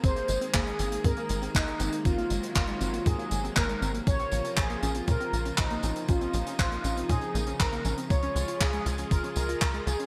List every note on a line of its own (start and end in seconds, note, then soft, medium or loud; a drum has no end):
0.00 0.23 G#1 medium
0.00 8.06 C3 medium
0.00 4.03 D#3 medium
0.00 4.03 G#3 medium
0.00 8.07 A#3 medium
0.00 0.14 C4 medium
0.00 2.03 G#4 medium
0.00 0.56 C5 loud
0.00 kick loud
0.00 closed hi-hat medium
0.00 tambourine soft
0.16 0.27 A#3 medium
0.16 closed hi-hat soft
0.16 tambourine soft
0.28 0.38 G#1 medium
0.28 0.41 G#3 medium
0.28 closed hi-hat loud
0.28 tambourine medium
0.41 0.48 C4 medium
0.41 closed hi-hat medium
0.41 tambourine soft
0.54 0.73 G#1 loud
0.54 0.60 A#3 loud
0.54 1.06 G#4 loud
0.54 kick loud
0.54 clap loud
0.54 closed hi-hat medium
0.54 tambourine soft
0.67 0.79 G#3 medium
0.67 closed hi-hat soft
0.67 tambourine soft
0.79 0.98 G#1 medium
0.79 0.90 C4 medium
0.79 closed hi-hat loud
0.79 tambourine medium
0.92 1.02 A#3 medium
0.92 closed hi-hat medium
0.92 tambourine soft
1.04 1.14 G#2 medium
1.04 1.15 C4 medium
1.04 1.56 A#4 loud
1.04 kick loud
1.04 closed hi-hat medium
1.04 tambourine soft
1.17 1.28 A#3 medium
1.17 closed hi-hat soft
1.17 tambourine soft
1.29 1.49 G#1 medium
1.29 1.42 G#3 medium
1.29 closed hi-hat loud
1.29 tambourine medium
1.42 1.49 C4 medium
1.42 closed hi-hat medium
1.42 tambourine soft
1.55 1.74 G#1 medium
1.55 1.61 A#3 loud
1.55 2.07 D#4 loud
1.55 kick loud
1.55 clap loud
1.55 closed hi-hat medium
1.55 tambourine soft
1.67 1.79 G#3 medium
1.67 closed hi-hat soft
1.67 tambourine soft
1.80 1.90 G#1 loud
1.80 1.91 C4 medium
1.80 closed hi-hat loud
1.80 tambourine medium
1.93 2.03 A#3 medium
1.93 closed hi-hat medium
1.93 tambourine soft
2.05 2.24 G#1 loud
2.05 4.05 F#3 medium
2.05 2.16 C4 medium
2.05 2.55 F4 loud
2.05 kick loud
2.05 closed hi-hat medium
2.05 tambourine soft
2.18 2.28 A#3 medium
2.18 closed hi-hat soft
2.18 tambourine soft
2.30 2.40 G#1 medium
2.30 2.42 G#3 medium
2.30 closed hi-hat medium
2.30 tambourine medium
2.43 2.49 C4 medium
2.43 closed hi-hat medium
2.43 tambourine soft
2.55 2.75 G#1 loud
2.55 2.62 A#3 loud
2.55 3.08 F4 medium
2.55 kick loud
2.55 clap loud
2.55 closed hi-hat medium
2.55 tambourine soft
2.67 2.80 G#3 medium
2.67 closed hi-hat soft
2.67 tambourine soft
2.81 3.00 G#1 medium
2.81 2.91 C4 medium
2.81 closed hi-hat loud
2.81 tambourine medium
2.93 3.04 A#3 medium
2.93 closed hi-hat medium
2.93 tambourine soft
3.06 3.16 G#2 medium
3.06 3.17 C4 medium
3.06 3.53 G#4 loud
3.06 kick loud
3.06 closed hi-hat medium
3.06 tambourine soft
3.19 3.29 A#3 medium
3.19 closed hi-hat soft
3.19 tambourine soft
3.31 3.51 G#1 medium
3.31 3.43 G#3 medium
3.31 closed hi-hat loud
3.31 tambourine medium
3.44 3.50 C4 medium
3.44 closed hi-hat medium
3.44 tambourine soft
3.56 3.76 G#1 loud
3.56 3.63 A#3 loud
3.56 3.92 A#4 loud
3.56 kick loud
3.56 clap loud
3.56 closed hi-hat medium
3.56 tambourine soft
3.69 3.81 G#3 medium
3.69 closed hi-hat soft
3.69 tambourine soft
3.82 4.01 G#1 loud
3.82 3.92 C4 medium
3.82 closed hi-hat medium
3.82 tambourine medium
3.94 4.05 A#3 medium
3.94 closed hi-hat medium
3.94 tambourine soft
4.07 4.26 A#1 medium
4.07 10.06 C#3 medium
4.07 10.06 F3 medium
4.07 4.17 C#4 medium
4.07 6.07 F4 medium
4.07 4.59 C#5 loud
4.07 kick loud
4.07 closed hi-hat medium
4.07 tambourine soft
4.19 4.30 C4 medium
4.19 closed hi-hat soft
4.19 tambourine soft
4.32 4.42 A#1 medium
4.32 4.44 A#3 medium
4.32 closed hi-hat medium
4.32 tambourine medium
4.45 4.51 C#4 medium
4.45 closed hi-hat medium
4.45 tambourine soft
4.57 4.77 A#1 loud
4.57 5.04 G#4 loud
4.57 4.68 C5 medium
4.57 kick loud
4.57 clap loud
4.57 closed hi-hat medium
4.57 tambourine soft
4.70 4.82 A#3 medium
4.70 closed hi-hat soft
4.70 tambourine soft
4.83 5.02 A#1 medium
4.83 4.93 C#4 medium
4.83 closed hi-hat medium
4.83 tambourine medium
4.95 5.06 C4 medium
4.95 closed hi-hat medium
4.95 tambourine soft
5.08 5.17 A#2 medium
5.08 5.18 C#4 medium
5.08 5.60 A#4 loud
5.08 kick loud
5.08 closed hi-hat medium
5.08 tambourine soft
5.20 5.31 C4 medium
5.20 closed hi-hat soft
5.20 tambourine soft
5.33 5.52 A#1 medium
5.33 5.45 A#3 medium
5.33 closed hi-hat medium
5.33 tambourine medium
5.45 5.52 C#4 medium
5.45 closed hi-hat medium
5.45 tambourine soft
5.58 5.77 A#1 medium
5.58 6.05 D#4 loud
5.58 5.69 C5 medium
5.58 kick loud
5.58 clap loud
5.58 closed hi-hat medium
5.58 tambourine soft
5.70 5.83 A#3 medium
5.70 closed hi-hat soft
5.70 tambourine soft
5.83 5.93 A#1 loud
5.83 5.94 C#4 medium
5.83 closed hi-hat medium
5.83 tambourine medium
5.96 6.07 C4 medium
5.96 closed hi-hat medium
5.96 tambourine soft
6.08 6.28 A#1 medium
6.08 6.19 C#4 medium
6.08 8.08 D#4 medium
6.08 6.58 F4 medium
6.08 kick loud
6.08 closed hi-hat medium
6.08 tambourine soft
6.21 6.32 C4 medium
6.21 closed hi-hat soft
6.21 tambourine soft
6.33 6.43 A#1 medium
6.33 6.46 A#3 medium
6.33 closed hi-hat medium
6.33 tambourine medium
6.46 6.53 C#4 medium
6.46 closed hi-hat medium
6.46 tambourine soft
6.59 6.78 A#1 loud
6.59 7.11 F4 loud
6.59 6.70 C5 medium
6.59 kick loud
6.59 clap loud
6.59 closed hi-hat medium
6.59 tambourine soft
6.72 6.84 A#3 medium
6.72 closed hi-hat soft
6.72 tambourine soft
6.84 7.03 A#1 medium
6.84 6.95 C#4 medium
6.84 closed hi-hat medium
6.84 tambourine medium
6.97 7.07 C4 medium
6.97 closed hi-hat medium
6.97 tambourine soft
7.09 7.19 A#2 medium
7.09 7.20 C#4 medium
7.09 7.61 G#4 medium
7.09 kick loud
7.09 closed hi-hat medium
7.09 tambourine soft
7.21 7.33 C4 medium
7.21 closed hi-hat soft
7.21 tambourine soft
7.35 7.54 A#1 medium
7.35 7.47 A#3 medium
7.35 closed hi-hat medium
7.35 tambourine medium
7.47 7.54 C#4 medium
7.47 closed hi-hat medium
7.47 tambourine soft
7.60 7.79 A#1 medium
7.60 7.95 A#4 loud
7.60 7.70 C5 medium
7.60 kick loud
7.60 clap loud
7.60 closed hi-hat medium
7.60 tambourine soft
7.72 7.85 A#3 medium
7.72 closed hi-hat soft
7.72 tambourine soft
7.85 7.95 A#1 loud
7.85 7.96 C#4 medium
7.85 closed hi-hat medium
7.85 tambourine medium
7.98 8.08 C4 medium
7.98 closed hi-hat medium
7.98 tambourine soft
8.10 8.29 C#2 medium
8.10 10.06 G#3 medium
8.10 8.21 F4 medium
8.10 10.06 F4 medium
8.10 10.06 G#4 medium
8.10 8.62 C#5 loud
8.10 kick loud
8.10 closed hi-hat medium
8.10 tambourine soft
8.23 8.33 C#4 medium
8.23 closed hi-hat soft
8.23 tambourine soft
8.36 8.45 C#2 loud
8.36 8.48 G#3 medium
8.36 closed hi-hat loud
8.36 tambourine medium
8.48 8.54 F4 medium
8.48 closed hi-hat medium
8.48 tambourine soft
8.60 8.80 C#2 loud
8.60 9.08 G#4 loud
8.60 8.71 F5 medium
8.60 kick loud
8.60 clap loud
8.60 closed hi-hat medium
8.60 tambourine soft
8.73 8.85 G#3 medium
8.73 closed hi-hat soft
8.73 tambourine soft
8.86 9.05 C#2 medium
8.86 8.96 F4 medium
8.86 closed hi-hat loud
8.86 tambourine medium
8.98 9.09 C#4 medium
8.98 closed hi-hat medium
8.98 tambourine soft
9.11 9.21 G#1 medium
9.11 9.22 F4 medium
9.11 9.22 A#4 medium
9.11 kick loud
9.11 closed hi-hat medium
9.11 tambourine soft
9.23 9.34 C#4 medium
9.23 closed hi-hat soft
9.23 tambourine soft
9.36 9.56 C#2 medium
9.36 9.48 G#3 medium
9.36 9.83 A#4 loud
9.36 closed hi-hat loud
9.36 tambourine medium
9.49 9.55 F4 medium
9.49 closed hi-hat medium
9.49 tambourine soft
9.61 9.81 C#2 medium
9.61 9.72 F5 medium
9.61 kick loud
9.61 clap loud
9.61 closed hi-hat medium
9.61 tambourine soft
9.74 9.86 G#3 medium
9.74 closed hi-hat soft
9.74 tambourine soft
9.87 9.96 C#2 loud
9.87 9.97 F4 medium
9.87 10.06 G#4 loud
9.87 closed hi-hat loud
9.87 tambourine medium
9.99 10.06 C#4 medium
9.99 closed hi-hat medium
9.99 tambourine soft